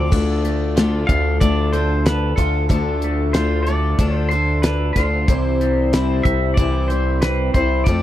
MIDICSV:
0, 0, Header, 1, 6, 480
1, 0, Start_track
1, 0, Key_signature, -1, "minor"
1, 0, Tempo, 645161
1, 92, Time_signature, 4, 2, 24, 8
1, 5971, End_track
2, 0, Start_track
2, 0, Title_t, "Pedal steel guitar"
2, 0, Program_c, 0, 26
2, 0, Note_on_c, 0, 74, 90
2, 795, Note_on_c, 0, 77, 92
2, 846, Note_off_c, 0, 74, 0
2, 1041, Note_off_c, 0, 77, 0
2, 1044, Note_on_c, 0, 74, 93
2, 1284, Note_on_c, 0, 72, 83
2, 1296, Note_off_c, 0, 74, 0
2, 1511, Note_off_c, 0, 72, 0
2, 1531, Note_on_c, 0, 71, 89
2, 1755, Note_on_c, 0, 69, 89
2, 1779, Note_off_c, 0, 71, 0
2, 1987, Note_off_c, 0, 69, 0
2, 2002, Note_on_c, 0, 69, 76
2, 2458, Note_off_c, 0, 69, 0
2, 2479, Note_on_c, 0, 72, 80
2, 2695, Note_off_c, 0, 72, 0
2, 2698, Note_on_c, 0, 74, 93
2, 3085, Note_off_c, 0, 74, 0
2, 3085, Note_on_c, 0, 72, 93
2, 3186, Note_off_c, 0, 72, 0
2, 3189, Note_on_c, 0, 72, 83
2, 3436, Note_off_c, 0, 72, 0
2, 3439, Note_on_c, 0, 71, 89
2, 3664, Note_off_c, 0, 71, 0
2, 3667, Note_on_c, 0, 72, 88
2, 4638, Note_on_c, 0, 76, 89
2, 4670, Note_off_c, 0, 72, 0
2, 4862, Note_off_c, 0, 76, 0
2, 4865, Note_on_c, 0, 74, 87
2, 5117, Note_on_c, 0, 72, 82
2, 5128, Note_off_c, 0, 74, 0
2, 5368, Note_on_c, 0, 71, 88
2, 5373, Note_off_c, 0, 72, 0
2, 5606, Note_off_c, 0, 71, 0
2, 5609, Note_on_c, 0, 72, 86
2, 5830, Note_off_c, 0, 72, 0
2, 5833, Note_on_c, 0, 74, 81
2, 5971, Note_off_c, 0, 74, 0
2, 5971, End_track
3, 0, Start_track
3, 0, Title_t, "Steel-string acoustic guitar"
3, 0, Program_c, 1, 25
3, 0, Note_on_c, 1, 60, 40
3, 0, Note_on_c, 1, 65, 51
3, 0, Note_on_c, 1, 69, 53
3, 85, Note_on_c, 1, 50, 63
3, 87, Note_off_c, 1, 65, 0
3, 89, Note_on_c, 1, 57, 67
3, 91, Note_off_c, 1, 60, 0
3, 91, Note_off_c, 1, 69, 0
3, 94, Note_on_c, 1, 62, 72
3, 96, Note_on_c, 1, 65, 71
3, 101, Note_on_c, 1, 69, 75
3, 563, Note_off_c, 1, 57, 0
3, 566, Note_off_c, 1, 62, 0
3, 569, Note_off_c, 1, 50, 0
3, 570, Note_off_c, 1, 65, 0
3, 572, Note_on_c, 1, 57, 58
3, 575, Note_on_c, 1, 62, 58
3, 577, Note_off_c, 1, 69, 0
3, 578, Note_on_c, 1, 65, 64
3, 587, Note_on_c, 1, 69, 64
3, 797, Note_off_c, 1, 69, 0
3, 805, Note_on_c, 1, 69, 40
3, 807, Note_off_c, 1, 65, 0
3, 812, Note_off_c, 1, 57, 0
3, 814, Note_off_c, 1, 62, 0
3, 816, Note_on_c, 1, 65, 39
3, 824, Note_on_c, 1, 62, 38
3, 1043, Note_off_c, 1, 62, 0
3, 1044, Note_off_c, 1, 65, 0
3, 1047, Note_on_c, 1, 50, 73
3, 1048, Note_off_c, 1, 69, 0
3, 1050, Note_on_c, 1, 57, 72
3, 1052, Note_on_c, 1, 62, 70
3, 1053, Note_on_c, 1, 65, 74
3, 1057, Note_on_c, 1, 69, 68
3, 1276, Note_off_c, 1, 69, 0
3, 1284, Note_on_c, 1, 69, 53
3, 1286, Note_off_c, 1, 65, 0
3, 1290, Note_off_c, 1, 50, 0
3, 1292, Note_off_c, 1, 57, 0
3, 1293, Note_off_c, 1, 62, 0
3, 1295, Note_on_c, 1, 65, 44
3, 1305, Note_on_c, 1, 62, 45
3, 1754, Note_off_c, 1, 69, 0
3, 1763, Note_on_c, 1, 69, 51
3, 1764, Note_off_c, 1, 65, 0
3, 1771, Note_off_c, 1, 62, 0
3, 1773, Note_on_c, 1, 65, 46
3, 1780, Note_on_c, 1, 62, 41
3, 1998, Note_off_c, 1, 62, 0
3, 2001, Note_on_c, 1, 50, 68
3, 2002, Note_off_c, 1, 65, 0
3, 2006, Note_on_c, 1, 57, 69
3, 2007, Note_on_c, 1, 62, 78
3, 2008, Note_off_c, 1, 69, 0
3, 2011, Note_on_c, 1, 65, 75
3, 2016, Note_on_c, 1, 69, 69
3, 2475, Note_off_c, 1, 57, 0
3, 2481, Note_off_c, 1, 62, 0
3, 2484, Note_on_c, 1, 57, 51
3, 2488, Note_off_c, 1, 50, 0
3, 2489, Note_off_c, 1, 65, 0
3, 2490, Note_on_c, 1, 62, 53
3, 2495, Note_off_c, 1, 69, 0
3, 2498, Note_on_c, 1, 65, 55
3, 2503, Note_on_c, 1, 69, 54
3, 2727, Note_off_c, 1, 69, 0
3, 2729, Note_off_c, 1, 57, 0
3, 2732, Note_off_c, 1, 62, 0
3, 2736, Note_off_c, 1, 65, 0
3, 2736, Note_on_c, 1, 69, 44
3, 2746, Note_on_c, 1, 65, 42
3, 2753, Note_on_c, 1, 62, 39
3, 2969, Note_off_c, 1, 62, 0
3, 2971, Note_on_c, 1, 50, 71
3, 2973, Note_off_c, 1, 65, 0
3, 2973, Note_off_c, 1, 69, 0
3, 2973, Note_on_c, 1, 57, 63
3, 2978, Note_on_c, 1, 62, 71
3, 2982, Note_on_c, 1, 65, 72
3, 2982, Note_on_c, 1, 69, 78
3, 3210, Note_off_c, 1, 69, 0
3, 3212, Note_off_c, 1, 50, 0
3, 3214, Note_off_c, 1, 57, 0
3, 3216, Note_off_c, 1, 62, 0
3, 3218, Note_off_c, 1, 65, 0
3, 3219, Note_on_c, 1, 69, 58
3, 3229, Note_on_c, 1, 65, 48
3, 3238, Note_on_c, 1, 62, 43
3, 3687, Note_off_c, 1, 69, 0
3, 3694, Note_off_c, 1, 65, 0
3, 3696, Note_on_c, 1, 69, 50
3, 3703, Note_on_c, 1, 65, 46
3, 3704, Note_off_c, 1, 62, 0
3, 3713, Note_on_c, 1, 62, 39
3, 3935, Note_off_c, 1, 69, 0
3, 3936, Note_on_c, 1, 48, 71
3, 3939, Note_off_c, 1, 65, 0
3, 3940, Note_off_c, 1, 62, 0
3, 3941, Note_on_c, 1, 52, 67
3, 3943, Note_on_c, 1, 55, 73
3, 3943, Note_on_c, 1, 60, 77
3, 3946, Note_on_c, 1, 64, 79
3, 3950, Note_on_c, 1, 72, 73
3, 4404, Note_off_c, 1, 55, 0
3, 4413, Note_on_c, 1, 55, 62
3, 4415, Note_off_c, 1, 48, 0
3, 4415, Note_off_c, 1, 64, 0
3, 4416, Note_off_c, 1, 60, 0
3, 4418, Note_off_c, 1, 52, 0
3, 4419, Note_on_c, 1, 60, 61
3, 4424, Note_on_c, 1, 64, 59
3, 4427, Note_off_c, 1, 72, 0
3, 4430, Note_on_c, 1, 72, 61
3, 4894, Note_off_c, 1, 55, 0
3, 4894, Note_on_c, 1, 48, 64
3, 4897, Note_off_c, 1, 64, 0
3, 4897, Note_on_c, 1, 52, 67
3, 4903, Note_off_c, 1, 60, 0
3, 4903, Note_on_c, 1, 55, 67
3, 4905, Note_off_c, 1, 72, 0
3, 4906, Note_on_c, 1, 60, 70
3, 4906, Note_on_c, 1, 64, 72
3, 4908, Note_on_c, 1, 72, 81
3, 5131, Note_off_c, 1, 64, 0
3, 5134, Note_off_c, 1, 48, 0
3, 5136, Note_off_c, 1, 52, 0
3, 5137, Note_off_c, 1, 60, 0
3, 5139, Note_off_c, 1, 55, 0
3, 5140, Note_on_c, 1, 64, 50
3, 5141, Note_off_c, 1, 72, 0
3, 5146, Note_on_c, 1, 60, 45
3, 5148, Note_on_c, 1, 55, 39
3, 5616, Note_off_c, 1, 64, 0
3, 5617, Note_on_c, 1, 72, 46
3, 5620, Note_off_c, 1, 60, 0
3, 5621, Note_off_c, 1, 55, 0
3, 5624, Note_on_c, 1, 64, 51
3, 5630, Note_on_c, 1, 60, 46
3, 5637, Note_on_c, 1, 55, 41
3, 5856, Note_off_c, 1, 72, 0
3, 5857, Note_off_c, 1, 60, 0
3, 5860, Note_off_c, 1, 64, 0
3, 5860, Note_on_c, 1, 53, 68
3, 5864, Note_off_c, 1, 55, 0
3, 5866, Note_on_c, 1, 60, 70
3, 5867, Note_on_c, 1, 57, 75
3, 5869, Note_on_c, 1, 65, 72
3, 5871, Note_on_c, 1, 69, 71
3, 5971, Note_off_c, 1, 53, 0
3, 5971, Note_off_c, 1, 57, 0
3, 5971, Note_off_c, 1, 60, 0
3, 5971, Note_off_c, 1, 65, 0
3, 5971, Note_off_c, 1, 69, 0
3, 5971, End_track
4, 0, Start_track
4, 0, Title_t, "Clean electric guitar"
4, 0, Program_c, 2, 27
4, 0, Note_on_c, 2, 53, 62
4, 0, Note_on_c, 2, 57, 62
4, 0, Note_on_c, 2, 60, 57
4, 0, Note_on_c, 2, 65, 62
4, 84, Note_off_c, 2, 53, 0
4, 87, Note_on_c, 2, 50, 63
4, 88, Note_off_c, 2, 57, 0
4, 91, Note_off_c, 2, 60, 0
4, 92, Note_off_c, 2, 65, 0
4, 331, Note_on_c, 2, 57, 56
4, 566, Note_on_c, 2, 65, 68
4, 799, Note_off_c, 2, 57, 0
4, 807, Note_on_c, 2, 57, 67
4, 1050, Note_on_c, 2, 62, 64
4, 1282, Note_off_c, 2, 50, 0
4, 1291, Note_on_c, 2, 50, 59
4, 1524, Note_off_c, 2, 62, 0
4, 1533, Note_on_c, 2, 62, 63
4, 1763, Note_off_c, 2, 65, 0
4, 1771, Note_on_c, 2, 65, 66
4, 2004, Note_off_c, 2, 50, 0
4, 2011, Note_off_c, 2, 57, 0
4, 2013, Note_on_c, 2, 50, 69
4, 2263, Note_on_c, 2, 57, 63
4, 2483, Note_off_c, 2, 65, 0
4, 2492, Note_on_c, 2, 65, 66
4, 2726, Note_off_c, 2, 57, 0
4, 2734, Note_off_c, 2, 62, 0
4, 2735, Note_on_c, 2, 57, 64
4, 2970, Note_on_c, 2, 62, 69
4, 3203, Note_off_c, 2, 50, 0
4, 3212, Note_on_c, 2, 50, 63
4, 3448, Note_off_c, 2, 62, 0
4, 3457, Note_on_c, 2, 62, 62
4, 3689, Note_off_c, 2, 65, 0
4, 3698, Note_on_c, 2, 65, 67
4, 3933, Note_off_c, 2, 50, 0
4, 3934, Note_on_c, 2, 48, 74
4, 3935, Note_off_c, 2, 57, 0
4, 3936, Note_off_c, 2, 62, 0
4, 3936, Note_off_c, 2, 65, 0
4, 4174, Note_on_c, 2, 55, 64
4, 4411, Note_on_c, 2, 64, 67
4, 4640, Note_off_c, 2, 55, 0
4, 4649, Note_on_c, 2, 55, 65
4, 4887, Note_on_c, 2, 60, 61
4, 5130, Note_on_c, 2, 52, 61
4, 5134, Note_off_c, 2, 48, 0
4, 5364, Note_off_c, 2, 60, 0
4, 5373, Note_on_c, 2, 60, 65
4, 5602, Note_off_c, 2, 64, 0
4, 5611, Note_on_c, 2, 64, 69
4, 5852, Note_off_c, 2, 52, 0
4, 5852, Note_off_c, 2, 55, 0
4, 5853, Note_off_c, 2, 64, 0
4, 5854, Note_off_c, 2, 60, 0
4, 5855, Note_on_c, 2, 41, 70
4, 5971, Note_off_c, 2, 41, 0
4, 5971, End_track
5, 0, Start_track
5, 0, Title_t, "Analog synth bass"
5, 0, Program_c, 3, 38
5, 0, Note_on_c, 3, 38, 81
5, 80, Note_off_c, 3, 38, 0
5, 90, Note_on_c, 3, 38, 89
5, 782, Note_off_c, 3, 38, 0
5, 810, Note_on_c, 3, 38, 92
5, 1038, Note_off_c, 3, 38, 0
5, 1047, Note_on_c, 3, 38, 104
5, 1741, Note_off_c, 3, 38, 0
5, 1766, Note_on_c, 3, 38, 79
5, 1996, Note_off_c, 3, 38, 0
5, 2005, Note_on_c, 3, 38, 93
5, 2940, Note_off_c, 3, 38, 0
5, 2964, Note_on_c, 3, 38, 90
5, 3659, Note_off_c, 3, 38, 0
5, 3686, Note_on_c, 3, 38, 77
5, 3917, Note_off_c, 3, 38, 0
5, 3930, Note_on_c, 3, 36, 93
5, 4622, Note_off_c, 3, 36, 0
5, 4649, Note_on_c, 3, 36, 83
5, 4878, Note_off_c, 3, 36, 0
5, 4890, Note_on_c, 3, 36, 107
5, 5583, Note_off_c, 3, 36, 0
5, 5611, Note_on_c, 3, 36, 79
5, 5840, Note_off_c, 3, 36, 0
5, 5852, Note_on_c, 3, 41, 84
5, 5971, Note_off_c, 3, 41, 0
5, 5971, End_track
6, 0, Start_track
6, 0, Title_t, "Drums"
6, 90, Note_on_c, 9, 36, 101
6, 93, Note_on_c, 9, 49, 91
6, 165, Note_off_c, 9, 36, 0
6, 168, Note_off_c, 9, 49, 0
6, 333, Note_on_c, 9, 42, 61
6, 407, Note_off_c, 9, 42, 0
6, 573, Note_on_c, 9, 42, 73
6, 578, Note_on_c, 9, 38, 93
6, 647, Note_off_c, 9, 42, 0
6, 652, Note_off_c, 9, 38, 0
6, 810, Note_on_c, 9, 36, 69
6, 813, Note_on_c, 9, 42, 65
6, 885, Note_off_c, 9, 36, 0
6, 887, Note_off_c, 9, 42, 0
6, 1051, Note_on_c, 9, 36, 99
6, 1053, Note_on_c, 9, 42, 77
6, 1125, Note_off_c, 9, 36, 0
6, 1128, Note_off_c, 9, 42, 0
6, 1291, Note_on_c, 9, 42, 63
6, 1365, Note_off_c, 9, 42, 0
6, 1531, Note_on_c, 9, 42, 80
6, 1536, Note_on_c, 9, 38, 97
6, 1606, Note_off_c, 9, 42, 0
6, 1611, Note_off_c, 9, 38, 0
6, 1769, Note_on_c, 9, 36, 69
6, 1771, Note_on_c, 9, 42, 58
6, 1843, Note_off_c, 9, 36, 0
6, 1846, Note_off_c, 9, 42, 0
6, 2008, Note_on_c, 9, 36, 94
6, 2009, Note_on_c, 9, 42, 81
6, 2082, Note_off_c, 9, 36, 0
6, 2083, Note_off_c, 9, 42, 0
6, 2246, Note_on_c, 9, 42, 64
6, 2321, Note_off_c, 9, 42, 0
6, 2485, Note_on_c, 9, 42, 81
6, 2490, Note_on_c, 9, 38, 102
6, 2560, Note_off_c, 9, 42, 0
6, 2565, Note_off_c, 9, 38, 0
6, 2727, Note_on_c, 9, 42, 65
6, 2802, Note_off_c, 9, 42, 0
6, 2966, Note_on_c, 9, 42, 86
6, 2967, Note_on_c, 9, 36, 104
6, 3040, Note_off_c, 9, 42, 0
6, 3041, Note_off_c, 9, 36, 0
6, 3209, Note_on_c, 9, 42, 65
6, 3283, Note_off_c, 9, 42, 0
6, 3446, Note_on_c, 9, 42, 84
6, 3452, Note_on_c, 9, 38, 103
6, 3521, Note_off_c, 9, 42, 0
6, 3526, Note_off_c, 9, 38, 0
6, 3689, Note_on_c, 9, 36, 70
6, 3690, Note_on_c, 9, 42, 57
6, 3695, Note_on_c, 9, 38, 28
6, 3763, Note_off_c, 9, 36, 0
6, 3764, Note_off_c, 9, 42, 0
6, 3769, Note_off_c, 9, 38, 0
6, 3930, Note_on_c, 9, 36, 96
6, 3930, Note_on_c, 9, 42, 77
6, 4004, Note_off_c, 9, 36, 0
6, 4004, Note_off_c, 9, 42, 0
6, 4174, Note_on_c, 9, 42, 60
6, 4248, Note_off_c, 9, 42, 0
6, 4412, Note_on_c, 9, 42, 79
6, 4417, Note_on_c, 9, 38, 99
6, 4486, Note_off_c, 9, 42, 0
6, 4491, Note_off_c, 9, 38, 0
6, 4651, Note_on_c, 9, 36, 78
6, 4653, Note_on_c, 9, 42, 58
6, 4725, Note_off_c, 9, 36, 0
6, 4727, Note_off_c, 9, 42, 0
6, 4890, Note_on_c, 9, 42, 77
6, 4891, Note_on_c, 9, 36, 101
6, 4965, Note_off_c, 9, 36, 0
6, 4965, Note_off_c, 9, 42, 0
6, 5134, Note_on_c, 9, 42, 59
6, 5208, Note_off_c, 9, 42, 0
6, 5371, Note_on_c, 9, 42, 80
6, 5377, Note_on_c, 9, 38, 102
6, 5446, Note_off_c, 9, 42, 0
6, 5451, Note_off_c, 9, 38, 0
6, 5613, Note_on_c, 9, 36, 70
6, 5613, Note_on_c, 9, 42, 57
6, 5687, Note_off_c, 9, 36, 0
6, 5688, Note_off_c, 9, 42, 0
6, 5849, Note_on_c, 9, 42, 81
6, 5853, Note_on_c, 9, 36, 97
6, 5924, Note_off_c, 9, 42, 0
6, 5927, Note_off_c, 9, 36, 0
6, 5971, End_track
0, 0, End_of_file